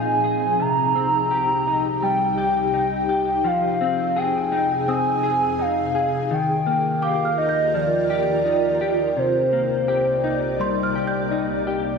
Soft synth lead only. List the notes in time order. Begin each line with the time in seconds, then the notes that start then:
Already playing: G#5
0.61 A#5
2.03 G5
3.47 F5
4.18 G5
4.89 G#5
5.61 F5
6.33 G5
7.03 F5
7.38 D#5
7.74 D5
9.18 C5